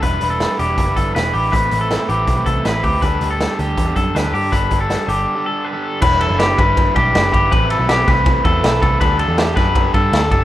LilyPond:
<<
  \new Staff \with { instrumentName = "Clean electric guitar" } { \time 4/4 \key e \minor \tempo 4 = 160 b'8. a'8. g'4 a'8 b'8 g'8 | b'8. a'8. g'4 a'8 b'8 g'8 | b'8. a'8. g'4 a'8 b'8 g'8 | b'8. a'8. g'4 a'8 b'8 a'8 |
b'8 a'8 g'8 b'4 g'4 g'8 | b'8 a'8 g'8 b'4 a'4 a'8 | b'8 a'8 g'8 b'4 a'4 a'8 | }
  \new Staff \with { instrumentName = "Overdriven electric guitar" } { \time 4/4 \key e \minor <g d' e' b'>8 <g d' e' b'>4 <e g d' e' b'>8. <e g d' e' b'>4 <d' e' b'>8. | <a c' e' b'>8 <a c' e' b'>4 <a, e a c' e' b'>8. <a, e a c' e' b'>4 <a c' e' b'>8. | <g d' g' a'>8 <g d' g' a'>4 <d g d' g' a'>8. <d g d' g' a'>4 <d' g' a'>8. | <g d' g' a'>8 <g d' g' a'>4 <g d' g' a'>8. <g d' g' a'>4 <d' g' a'>8. |
<e g d' e' b'>8. <d' e' b'>8. <g d' e' b'>4 <g d' e' b'>8 <g d' e' b'>16 <d' e' b'>8. | <a, e a c' e' b'>8. <a c' e' b'>8. <a c' e' b'>4 <a c' e' b'>8 <a c' e' b'>16 <a c' e' b'>8. | <d g d' g' a'>8. <d' g' a'>8. <d' g' a'>4 <g d' g' a'>8 <g d' g' a'>16 <d' g' a'>8. | }
  \new Staff \with { instrumentName = "Picked electric bass" } { \clef bass \time 4/4 \key e \minor e,,8 e,,8. r16 e,,8 fis,,8 g,,8 e,,8 a,,8 | a,,8 a,,8. r16 a,,8 b,,8 c,8 a,,8 d,8 | d,8 d,8. r16 d,8 e,8 fis,8 d,8 g,8 | g,,8 g,,8. r16 g,,8 r2 |
e,,8. fis,,8. g,,4 b,,8 fis,,8 g,,8 | a,,8. b,,8. c,4 e,8 b,,8 c,8 | d,8. e,8. fis,4 g,8 d,8 fis,,8 | }
  \new DrumStaff \with { instrumentName = "Drums" } \drummode { \time 4/4 <hh bd>8 hh8 <hh sn>8 hh8 <hh bd>8 <hh bd>8 <hh sn>8 hho8 | <hh bd>8 hh8 <hh sn>8 hh8 <hh bd>8 <hh bd>8 <hh sn>8 <hho bd>8 | <hh bd>8 hh8 <hh sn>8 hh8 <hh bd>8 <hh bd>8 <hh sn>8 hho8 | <hh bd>8 <hh bd>8 <hh sn>8 hh8 r4 r4 |
<cymc bd>8 cymr8 <cymr sn>8 <bd cymr>8 <bd cymr>8 <bd cymr>8 <cymr sn>8 <bd cymr>8 | <bd cymr>8 cymr8 <cymr sn>8 <bd cymr sn>8 <bd cymr>8 <bd cymr>8 <cymr sn>8 <bd cymr>8 | <bd cymr>8 cymr8 <cymr sn>8 <bd cymr sn>8 <bd cymr>8 <bd cymr>8 <cymr sn>8 <bd cymr>8 | }
>>